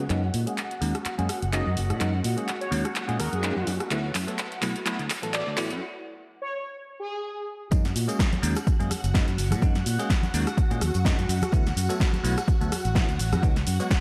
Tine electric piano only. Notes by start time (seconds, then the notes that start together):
0.09 G#3 A#3 C#4 D#4
0.47 G#3 A#3 C#4 G#4
0.81 G#3 A#3 C#4 D#4
1.18 G#3 A#3 C#4 G#4
1.52 G#3 A#3 C#4 D#4
2.00 G#3 A#3 C#4 D#4
2.37 G#3 A#3 C#4 G#4
2.71 G#3 A#3 C#4 D#4
3.08 G#3 A#3 C#4 G#4
3.42 G#3 A#3 C#4 D#4
3.90 F#3 A3 B3 E4
4.27 F#3 A3 B3 A4
4.61 F#3 A3 B3 E4
4.85 F#3 A3 B3 E4
5.22 F#3 A3 B3 A4
5.57 F#3 A3 B3 E4
7.71 G#3 A#3 C#4 D#4
8.08 G#3 A#3 C#4 G#4
8.42 G#3 A#3 C#4 D#4
8.79 G#3 A#3 C#4 G#4
9.14 G#3 A#3 C#4 D#4
9.62 G#3 A#3 C#4 D#4
9.99 G#3 A#3 C#4 G#4
10.34 G#3 A#3 C#4 D#4
10.71 G#3 A#3 C#4 G#4
11.05 G#3 A#3 C#4 D#4
11.52 F#3 A3 B3 E4
11.89 F#3 A3 B3 A4
12.23 F#3 A3 B3 E4
12.61 F#3 A3 B3 A4
12.95 F#3 A3 B3 E4
13.43 F#3 G#3 B3 D#4
13.80 F#3 G#3 B3 F#4